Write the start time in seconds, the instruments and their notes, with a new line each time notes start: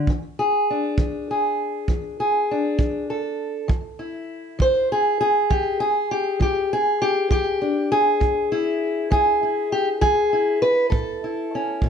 0.07 steel-string acoustic guitar E3, kick
0.39 steel-string acoustic guitar G#4
0.70 steel-string acoustic guitar D4
0.98 steel-string acoustic guitar E3, kick
1.31 steel-string acoustic guitar G#4
1.88 steel-string acoustic guitar E3, kick
2.20 steel-string acoustic guitar G#4
2.51 steel-string acoustic guitar D4
2.78 steel-string acoustic guitar E3, kick
3.10 steel-string acoustic guitar A4
3.68 steel-string acoustic guitar E3, kick
3.99 steel-string acoustic guitar E4
4.59 steel-string acoustic guitar E3 C5, kick
4.92 steel-string acoustic guitar G#4
5.21 steel-string acoustic guitar G#4
5.50 steel-string acoustic guitar E3 G4, kick
5.80 steel-string acoustic guitar G#4
6.11 steel-string acoustic guitar G4
6.40 steel-string acoustic guitar E3 G4, kick
6.73 steel-string acoustic guitar G#4
7.02 steel-string acoustic guitar G4
7.30 steel-string acoustic guitar E3 G4, kick
7.62 steel-string acoustic guitar D4
7.92 steel-string acoustic guitar G#4
8.20 steel-string acoustic guitar E3, kick
8.52 steel-string acoustic guitar E4
9.11 steel-string acoustic guitar E3 G#4, kick
9.43 steel-string acoustic guitar E4
9.72 steel-string acoustic guitar G4
10.01 steel-string acoustic guitar E3 G#4, kick
10.33 steel-string acoustic guitar E4
10.62 steel-string acoustic guitar B4
10.90 steel-string acoustic guitar A2 A4, kick
11.24 steel-string acoustic guitar E4
11.55 steel-string acoustic guitar C#4
11.82 steel-string acoustic guitar A2, kick